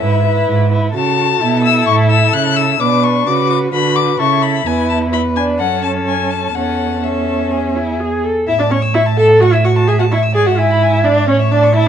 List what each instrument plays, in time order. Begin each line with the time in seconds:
Already playing: violin E5
0.02 cello G#2, viola E4, violin B4
0.26 viola E4, violin B4
0.49 cello G#2
0.72 viola E4, violin B4
0.95 cello C#3, viola F#4, violin A4 A5
1.41 cello B2, viola E4
1.64 violin E6
1.87 cello A2, violin C#6
2.10 violin E6
2.33 cello C#3, violin F#6
2.56 violin E6
2.80 cello B2, viola D4, violin B4 D6
3.04 violin C#6
3.27 cello C#3, viola F#4, violin B4 D6
3.50 violin D6
3.73 cello D3, viola F#4, violin B4 B5
3.96 violin D6
4.19 cello C#3, viola E4, violin A4 C#6
4.43 violin B5
4.66 cello E2, viola E4, violin B4 G#5
4.90 violin A5
5.12 viola E4, violin B4 B5
5.36 viola D4, violin G#5
5.59 cello F#2, viola C#4, violin A4 F#5
5.83 violin A5
6.07 violin G#5
6.31 violin A5
6.55 cello E2, viola C#4, violin A4 F#5
7.03 viola C#4, violin A4 E5
7.51 violin G#4
7.76 viola E4
8.00 viola G#4
8.24 viola A4
8.47 cello A2, viola E4, violin E5
8.59 viola D4, violin D5 A5
8.70 viola C#4, violin C#5 C#6
8.82 violin E6
8.94 viola E4, violin E5 C#6
9.06 violin A5
9.17 viola A4, violin E5 A5
9.29 violin A5
9.41 viola F#4, violin F#5 C#6
9.53 viola E4, violin E5 E6
9.64 viola F#4, violin F#5 C#6
9.76 violin A5
9.88 viola G#4, violin E5 G#5
9.99 viola F#4, violin F#5 A5
10.12 viola E4, violin E5 C#6
10.23 violin E6
10.35 cello G#2, viola G#4, violin D5 G#5
10.46 viola F#4, violin E5 F#5
10.58 viola E4, violin E5 G#5
10.70 violin B5
10.83 violin G#5
10.93 violin E5
11.04 viola D4, violin D5
11.16 violin E5
11.28 cello A2, viola C#4, violin C#5
11.40 violin E5
11.51 viola D4, violin D5 A5
11.63 violin C#6
11.74 viola E4, violin E5 A5